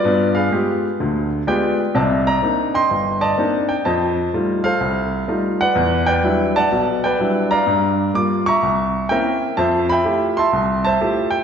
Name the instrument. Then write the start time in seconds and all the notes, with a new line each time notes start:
grand piano
Already playing: F4 B4 D5
0.04 G2 B3
0.35 G#4 B4 F5
0.51 G#3 B3 F4 G4
1.00 D2 D3
1.47 G#3 B3 F4 G4 B4 D5 G5
1.95 C2 C3 D5 D#5 A5
2.27 D5 D#5 A#5
2.42 A#3 C4 D4 D#4
2.74 D#5 G5 C6
2.91 G1
3.21 D5 D#5 A5
3.38 A#3 C4 D4 D#4
3.69 G5
3.85 F2 C5 D#5 A5
4.34 G3 A3 D#4 F4
4.64 A4 C5 F5
4.80 C2
5.28 G3 A3 D#4 F4
5.61 B4 D5 F#5
5.75 E2
6.07 B4 D5 G5
6.23 F#3 G3 D4 E4
6.56 D5 F#5 A5
6.72 B1 B2
7.04 B4 D5 G5
7.20 F#3 G3 D4 E4
7.51 D5 F5 A#5
7.67 G2
8.14 G3 A#3 F4 D6
8.46 E5 A#5 C#6
8.63 C2
9.09 A#3 C4 C#4 E4 A#4 E5 G5
9.57 F2 C5 E5 A5
9.89 E5 G5 B5
10.05 A3 E4 F4 G4
10.37 E5 A5 C6
10.53 C2
10.85 C5 E5 A5
11.01 A3 E4 F4 G4
11.30 G5